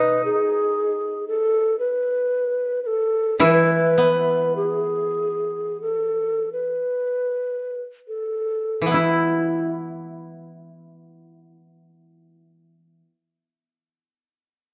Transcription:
Already playing: koto B2 D#4, bansuri B4
0.25 bansuri G#4
1.28 bansuri A4
1.79 bansuri B4
2.83 bansuri A4 B4
3.39 koto E3 E4, bansuri B4
3.98 koto B3
4.56 bansuri G#4
5.81 bansuri A4
6.53 bansuri B4
8.08 bansuri A4
8.82 koto E3
8.86 koto B3
8.91 koto E4, bansuri E4

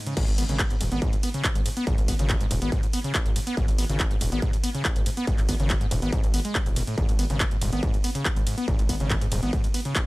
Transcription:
Already playing: synth drone G#2
0.07 acid bass C#3, closed hi-hat
0.17 analog synth bass G#1, acid bass G#2, kick, closed hi-hat, crash
0.28 analog synth bass G#1, acid bass G#2, closed hi-hat
0.38 acid bass B3, open hi-hat, ride
0.49 analog synth bass G#1, acid bass C#3, closed hi-hat
0.59 acid bass A2, kick, clap, closed hi-hat
0.70 acid bass G#2, closed hi-hat
0.81 analog synth bass D#1, acid bass G#2, open hi-hat, ride
0.92 analog synth bass G#1, acid bass B3, closed hi-hat
1.02 acid bass G#2, kick, closed hi-hat
1.13 acid bass G#2, closed hi-hat
1.23 acid bass B3, open hi-hat, ride
1.34 acid bass C#3, closed hi-hat
1.44 acid bass A2, kick, clap, closed hi-hat
1.55 analog synth bass G#1, acid bass G#2, closed hi-hat
1.66 acid bass G#2, open hi-hat, ride
1.77 acid bass B3, closed hi-hat
1.87 analog synth bass G#1, acid bass G#2, kick, closed hi-hat
1.98 analog synth bass G#1, acid bass G#2, closed hi-hat
2.08 acid bass B3, kick, open hi-hat, ride
2.19 analog synth bass G#1, acid bass C#3, closed hi-hat
2.30 acid bass A2, kick, clap, closed hi-hat
2.40 acid bass G#2, closed hi-hat
2.51 analog synth bass D#1, acid bass G#2, open hi-hat, ride
2.62 analog synth bass G#1, acid bass B3, closed hi-hat
2.72 acid bass G#2, kick, closed hi-hat
2.83 acid bass G#2, closed hi-hat
2.93 acid bass B3, open hi-hat, ride
3.04 acid bass C#3, closed hi-hat
3.15 acid bass A2, kick, clap, closed hi-hat
3.26 analog synth bass G#1, acid bass G#2, closed hi-hat
3.36 acid bass G#2, open hi-hat, ride
3.47 acid bass B3, closed hi-hat
3.57 analog synth bass G#1, acid bass G#2, kick, closed hi-hat
3.68 analog synth bass G#1, acid bass G#2, closed hi-hat
3.78 acid bass B3, open hi-hat, ride
3.89 analog synth bass G#1, acid bass C#3, closed hi-hat
4.00 acid bass A2, kick, clap, closed hi-hat
4.11 acid bass G#2, closed hi-hat
4.21 analog synth bass D#1, acid bass G#2, open hi-hat, ride
4.32 analog synth bass G#1, acid bass B3, closed hi-hat
4.42 acid bass G#2, kick, closed hi-hat
4.53 acid bass G#2, closed hi-hat
4.64 acid bass B3, open hi-hat, ride
4.75 acid bass C#3, closed hi-hat
4.85 acid bass A2, kick, clap, closed hi-hat
4.96 analog synth bass G#1, acid bass G#2, closed hi-hat
5.06 acid bass G#2, open hi-hat, ride
5.17 acid bass B3, closed hi-hat
5.27 analog synth bass G#1, acid bass G#2, kick, closed hi-hat
5.38 analog synth bass G#1, acid bass G#2, clap, closed hi-hat
5.49 acid bass B3, kick, open hi-hat, ride
5.60 analog synth bass G#1, acid bass C#3, closed hi-hat
5.70 acid bass A2, kick, clap, closed hi-hat
5.81 acid bass G#2, closed hi-hat
5.91 analog synth bass D#1, acid bass G#2, open hi-hat, ride
6.02 analog synth bass G#1, acid bass B3, closed hi-hat
6.12 acid bass G#2, kick, closed hi-hat
6.23 analog synth bass G#1, acid bass G#2, closed hi-hat
6.34 acid bass B3, open hi-hat, ride
6.45 acid bass G#3, closed hi-hat
6.55 acid bass G#2, kick, clap, closed hi-hat
6.66 analog synth bass D#1, acid bass G#2, closed hi-hat
6.76 acid bass B2, open hi-hat, ride
6.87 acid bass A2, closed hi-hat
6.98 analog synth bass G#1, acid bass G#2, kick, closed hi-hat
7.09 analog synth bass G#1, acid bass G#2, closed hi-hat
7.19 acid bass B3, open hi-hat, ride
7.30 analog synth bass G#1, acid bass C#3, closed hi-hat
7.40 acid bass A2, kick, clap, closed hi-hat
7.51 acid bass G#2, closed hi-hat
7.61 analog synth bass D#1, acid bass G#2, open hi-hat, ride
7.73 analog synth bass G#1, acid bass B3, closed hi-hat
7.83 acid bass G#2, kick, closed hi-hat
7.94 acid bass G#2, closed hi-hat
8.04 acid bass B3, open hi-hat, ride
8.15 acid bass C#3, closed hi-hat
8.25 acid bass A2, kick, clap, closed hi-hat
8.36 analog synth bass G#1, acid bass G#2, closed hi-hat
8.47 acid bass G#2, open hi-hat, ride
8.58 acid bass B3, closed hi-hat
8.68 analog synth bass G#1, acid bass G#2, kick, closed hi-hat
8.79 analog synth bass G#1, acid bass G#2, closed hi-hat
8.89 acid bass B3, kick, open hi-hat, ride
9.00 analog synth bass G#1, acid bass C#3, closed hi-hat
9.10 acid bass A2, kick, clap, closed hi-hat
9.21 acid bass G#2, closed hi-hat
9.32 analog synth bass D#1, acid bass G#2, open hi-hat, ride
9.43 analog synth bass G#1, acid bass B3, closed hi-hat
9.53 acid bass G#2, kick, closed hi-hat
9.64 acid bass G#2, closed hi-hat
9.74 acid bass B3, open hi-hat, ride
9.85 acid bass C#3, closed hi-hat
9.95 acid bass A2, kick, clap, closed hi-hat

